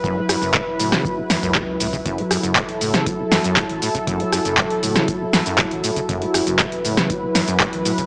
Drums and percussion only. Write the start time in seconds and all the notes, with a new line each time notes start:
0.04 kick, shaker
0.29 cross-stick, open hi-hat, shaker
0.42 shaker
0.54 kick, clap, shaker
0.80 open hi-hat, shaker
0.92 cross-stick, snare, shaker
1.05 kick, shaker
1.30 snare, open hi-hat, shaker
1.43 shaker
1.55 kick, cross-stick, clap, shaker
1.80 open hi-hat, shaker
1.93 kick, shaker
2.06 kick, closed hi-hat, shaker
2.18 closed hi-hat
2.31 cross-stick, open hi-hat, shaker
2.43 closed hi-hat, shaker
2.56 kick, clap, closed hi-hat, shaker
2.69 closed hi-hat
2.81 open hi-hat, shaker
2.94 cross-stick, snare, closed hi-hat, shaker
3.06 kick, closed hi-hat, shaker
3.32 snare, open hi-hat, shaker
3.44 closed hi-hat, shaker
3.57 kick, cross-stick, clap, closed hi-hat, shaker
3.69 closed hi-hat
3.82 open hi-hat, shaker
3.95 kick, closed hi-hat, shaker
4.07 kick, closed hi-hat, shaker
4.20 closed hi-hat
4.33 cross-stick, open hi-hat, shaker
4.45 closed hi-hat, shaker
4.58 kick, clap, closed hi-hat, shaker
4.70 closed hi-hat
4.83 open hi-hat, shaker
4.96 cross-stick, snare, closed hi-hat, shaker
5.08 kick, closed hi-hat, shaker
5.33 snare, open hi-hat, shaker
5.46 closed hi-hat, shaker
5.58 kick, cross-stick, clap, closed hi-hat, shaker
5.71 closed hi-hat
5.84 open hi-hat, shaker
5.96 kick, closed hi-hat, shaker
6.09 kick, closed hi-hat, shaker
6.22 closed hi-hat
6.34 cross-stick, open hi-hat, shaker
6.47 closed hi-hat, shaker
6.59 kick, clap, closed hi-hat, shaker
6.72 closed hi-hat
6.85 open hi-hat, shaker
6.97 cross-stick, snare, closed hi-hat, shaker
7.10 kick, closed hi-hat, shaker
7.35 snare, open hi-hat, shaker
7.48 closed hi-hat, shaker
7.60 kick, cross-stick, clap, closed hi-hat, shaker
7.73 closed hi-hat
7.85 open hi-hat, shaker
7.98 kick, closed hi-hat, shaker